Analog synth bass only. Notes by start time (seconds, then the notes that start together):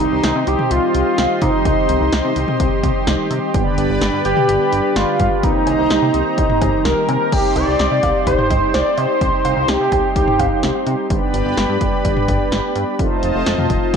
0.00 C2
0.12 C2
0.24 C2
0.36 C3
0.47 C2
0.71 C2
0.95 C2
1.18 C2
1.42 C3
1.65 C2
1.89 C2
2.01 C2
2.13 C2
2.24 C3
2.36 C2
2.60 C2
2.83 C2
3.07 C2
3.31 C3
3.54 G1
3.78 G1
3.90 G1
4.02 G1
4.13 G2
4.25 G1
4.49 G1
4.72 G1
4.96 G1
5.20 G2
5.43 C2
5.67 C2
5.79 C2
5.91 C2
6.02 C3
6.14 C2
6.38 C2
6.61 C2
6.85 C2
7.09 C3
7.32 C2
7.56 C2
7.68 C2
7.80 C2
7.91 C3
8.03 C2
8.27 C2
8.50 C2
8.74 C2
8.98 C3
9.21 C2
9.45 C2
9.57 C2
9.69 C2
9.80 C3
9.92 C2
10.16 C2
10.39 C2
10.63 C2
10.87 C3
11.10 G1
11.34 G1
11.46 G1
11.57 G1
11.69 G2
11.81 G1
12.05 G1
12.28 G1
12.52 G1
12.76 G2
12.99 F1
13.23 F1
13.35 F1
13.47 F1
13.58 F2
13.70 F1